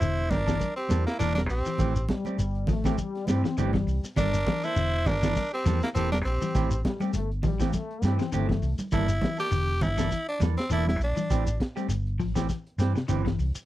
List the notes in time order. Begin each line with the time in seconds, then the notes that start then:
Already playing: E4 C5
0.00 E1 D3, muted clean electric guitar stroke, closed hi-hat, shekere
0.17 closed hi-hat
0.30 G1 D4 A#4, muted clean electric guitar stroke, kick, snare, open hi-hat, high conga, low conga, shekere
0.47 E3 A#3 D4 A4, kick, snare, closed hi-hat, shekere
0.60 muted clean electric guitar stroke, kick, closed hi-hat, high conga, shekere
0.76 C4 G4, closed hi-hat
0.89 E2 E3 A#3 D4 A4, muted clean electric guitar stroke, snare, closed hi-hat, high conga, shekere
1.06 A#3 E4, muted clean electric guitar stroke, muted fingered electric bass stroke, snare, closed hi-hat, shekere
1.19 E1 E3 A#3 D4 A4 A#4, closed hi-hat, shekere
1.35 D4 A#4, muted clean electric guitar stroke, snare, high conga
1.50 A#1 C4 G4, open hi-hat, shekere
1.66 E3, muted clean electric guitar stroke, shekere
1.78 A1 E3 A3 C4 G4, kick, snare, closed hi-hat, low conga, shekere
1.96 muted clean electric guitar stroke, closed hi-hat, shekere
2.09 G3, muted clean electric guitar stroke, kick, snare, closed hi-hat, high conga
2.25 A3 C4 G4, closed hi-hat, high conga, shekere
2.38 G1, muted clean electric guitar stroke, closed hi-hat, shekere
2.55 closed hi-hat
2.67 A1 F3 A3, muted clean electric guitar stroke, kick, snare, open hi-hat, high conga, low conga, shekere
2.84 E3 A3 C4 G4, kick, snare, low conga, shekere
2.98 G3, muted clean electric guitar stroke, kick, closed hi-hat, shekere
3.15 snare, closed hi-hat
3.27 G2 E3 A3 C4 G4, snare, closed hi-hat, high conga, shekere
3.44 E3, muted fingered electric bass stroke, muted clean electric guitar stroke, snare, closed hi-hat, shekere
3.57 G1 D3 E3 G3 A3 C4 G4, closed hi-hat, shekere
3.73 E3, muted clean electric guitar stroke, kick, snare, closed hi-hat, high conga
3.87 C2, open hi-hat, shekere
4.03 muted fingered electric bass stroke, muted clean electric guitar stroke, snare, shekere
4.16 G1 G3 D4 A4 A#4, muted clean electric guitar stroke, kick, closed hi-hat, low conga, shekere
4.34 muted clean electric guitar stroke, snare, shekere
4.46 E3, muted clean electric guitar stroke, kick, snare, closed hi-hat, high conga
4.63 A#3 D4 E4 A4 C5, snare, closed hi-hat, shekere
4.76 E1 D3, muted clean electric guitar stroke, closed hi-hat, shekere
4.93 closed hi-hat
5.06 G1 D4 A#4, muted clean electric guitar stroke, kick, open hi-hat, high conga, low conga, shekere
5.22 E3 A#3 D4 A4, kick, snare, closed hi-hat, low conga, shekere
5.36 muted clean electric guitar stroke, kick, snare, closed hi-hat, high conga, shekere
5.52 C4 G4, closed hi-hat
5.65 E2 E3 F3 A#3 A4, muted clean electric guitar stroke, snare, closed hi-hat, high conga, shekere
5.82 A#3 E4, muted fingered electric bass stroke, muted clean electric guitar stroke, snare, closed hi-hat, shekere
5.95 E1 E3 A#3 C4 G4 A4, muted clean electric guitar stroke, closed hi-hat, shekere
6.11 D4 A#4, muted clean electric guitar stroke, snare, high conga
6.24 A#1 C4 G4, open hi-hat, shekere
6.41 E3, muted clean electric guitar stroke, high conga, shekere
6.55 A1 E3 A3 C4 G4, kick, closed hi-hat, low conga, shekere
6.71 muted clean electric guitar stroke, closed hi-hat, shekere
6.84 G3, muted clean electric guitar stroke, kick, snare, closed hi-hat, high conga
7.00 G3 A3 C4 G4, snare, closed hi-hat, high conga, shekere
7.14 G1 A3, muted clean electric guitar stroke, closed hi-hat, shekere
7.31 closed hi-hat
7.43 A1 F3 G3, muted clean electric guitar stroke, kick, open hi-hat, high conga, low conga, shekere
7.60 E3 A3 C4 G4, kick, snare, shekere
7.67 A#3
7.72 A3, muted clean electric guitar stroke, kick, snare, closed hi-hat, high conga, shekere
7.91 closed hi-hat
8.02 G2 E3 A3 C4 G4, snare, closed hi-hat, high conga, shekere
8.19 E3, muted fingered electric bass stroke, muted clean electric guitar stroke, snare, closed hi-hat, shekere
8.32 G1 D3 E3 A3 C4 G4, muted clean electric guitar stroke, closed hi-hat, shekere
8.49 E3, muted clean electric guitar stroke, kick, snare, closed hi-hat, high conga
8.62 C2, open hi-hat, shekere
8.78 muted fingered electric bass stroke, muted clean electric guitar stroke, high conga, shekere
8.92 G1 E3 G3 A#3 D4 E4 A4, kick, closed hi-hat, low conga, shekere
9.09 muted clean electric guitar stroke, snare, shekere
9.22 E3, muted clean electric guitar stroke, kick, snare, closed hi-hat, high conga
9.38 A#3 D4 G4 A4, snare, shekere
9.51 E1 D3, muted clean electric guitar stroke, closed hi-hat, shekere
9.69 closed hi-hat
9.81 G1 E4, muted clean electric guitar stroke, kick, open hi-hat, high conga, low conga, shekere
9.97 E3 A#3 D4 A4, kick, snare, closed hi-hat, shekere
10.11 muted clean electric guitar stroke, kick, closed hi-hat, shekere
10.28 D4, closed hi-hat
10.40 E2 E3 F3 A#3 D4 A4, snare, closed hi-hat, high conga, shekere
10.57 C4, muted fingered electric bass stroke, muted clean electric guitar stroke, snare, closed hi-hat, shekere
10.69 E1 E3 A#3 D4 E4 A4, closed hi-hat, shekere
10.87 E4, muted clean electric guitar stroke, snare, high conga
10.99 A#1, open hi-hat, shekere
11.04 D4
11.16 E3, muted clean electric guitar stroke, high conga, shekere
11.30 A1 E3 A3 C4 G4, kick, snare, closed hi-hat, shekere
11.46 muted clean electric guitar stroke, closed hi-hat, shekere
11.60 muted clean electric guitar stroke, kick, snare, closed hi-hat
11.76 G3 A3 C4 G4, snare, closed hi-hat, shekere
11.88 G1, muted clean electric guitar stroke, closed hi-hat, shekere
12.07 closed hi-hat
12.20 A1 F3, muted clean electric guitar stroke, kick, open hi-hat, shekere
12.35 E3 A3 C4 G4, kick, snare, shekere
12.49 muted clean electric guitar stroke, kick, snare, closed hi-hat, shekere
12.67 closed hi-hat
12.78 G2 E3 C4 G4, muted clean electric guitar stroke, snare, closed hi-hat, shekere
12.95 C3, muted clean electric guitar stroke, muted fingered electric bass stroke, snare, closed hi-hat, shekere
13.08 G1 D3 E3 C4 G4, muted clean electric guitar stroke, closed hi-hat, shekere
13.25 E3, muted clean electric guitar stroke, kick, snare, closed hi-hat
13.39 C2, open hi-hat, shekere
13.55 muted clean electric guitar stroke, muted fingered electric bass stroke, shekere